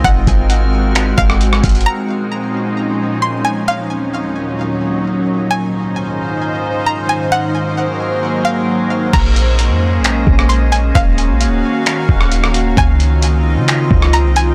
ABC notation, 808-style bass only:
X:1
M:4/4
L:1/16
Q:1/4=132
K:Bbm
V:1 name="808-style bass" clef=bass
A,,,2 A,,,8 A,,,4 A,,,2 | z16 | z16 | z16 |
z16 | B,,,4- B,,, F,,2- F,,/2 B,,,2- B,,,/2 B,,,6 | E,,,3 B,,,3/2 E,,,3/2 z4 E,,,6 | D,,6- D,, D,3 D,,3 C,,3 |]